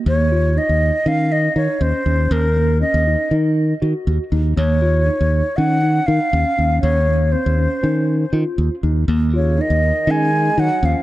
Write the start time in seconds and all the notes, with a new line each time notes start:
0.06 D#2 A#3 C#5
0.32 F4
0.57 D#4 D#5
0.69 D#2
1.06 D#3 C#4 F5
1.32 D#5
1.56 D#3 D#4 C#5
1.81 D#2 C#4 C5
2.06 D#2 C#4
2.31 D#2 A#4
2.57 A#3
2.81 C#4 D#5
2.94 D#2
3.07 D#4
3.31 D#3 D#4
3.82 D#3 F#4
4.07 D#2
4.32 D#2 D#4
4.56 D#2 A#3 C#5
4.82 F4
5.07 D#4
5.21 D#2
5.57 D#3 C#4 F#5
5.83 D#4
6.07 D#3 D#4 F5
6.33 D#2 C#4
6.58 D#2 C#4
6.82 D#2 C#5
7.08 A#3
7.32 C4 C5
7.46 D#2
7.59 C#4
7.83 D#3 C#4
8.33 D#3 F4
8.58 D#2
8.83 D#2 D#4
9.08 D#2 A#3
9.34 C#3 F4 C#5
9.58 D#3 D#4 D#5
9.70 D#2
10.07 D#3 G#3 C#4 G#5
10.32 D#4
10.57 D#3 F#3 D#4 F#5
10.83 D#2 F3 C#4 F5